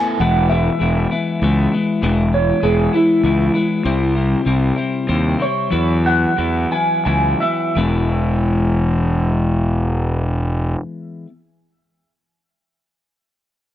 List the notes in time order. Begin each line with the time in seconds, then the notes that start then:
Already playing: A3 B3 E4 A4 G#5
0.20 E1 E3 G#3 B3 E4 F#5
0.49 G#3 B3 E4 E5
0.79 E1 E3 G#3 B3 E4
1.11 G#3 B3 E4
1.42 C#2 E3 G#3 B3 E4
1.72 G#3 B3 E4
2.02 E1 E3 G#3 B3 E4
2.32 G#3 B3 E4 C#5
2.62 E1 E3 G#3 B3 E4 G#4
2.93 G#3 B3 E4
3.24 C#2 E3 G#3 B3 E4
3.54 G#3 B3 E4
3.84 C2 C3 G3 C4 E4
4.15 G3 C4 E4
4.45 C2 C3 G3 C4 E4
4.76 G3 C4 E4
5.07 D#2 C3 G3 C4 E4
5.39 G3 C4 E4 C#5
5.70 E2 E3 F#3 B3 E4
6.04 F#3 B3 E4 F#5
6.37 E2 E3 F#3 B3 E4
6.71 F#3 B3 E4 G#5
7.05 C#2 E3 F#3 B3 E4 G#5
7.40 F#3 B3 E4 E5
7.75 E1 E3 G#3 B3 E4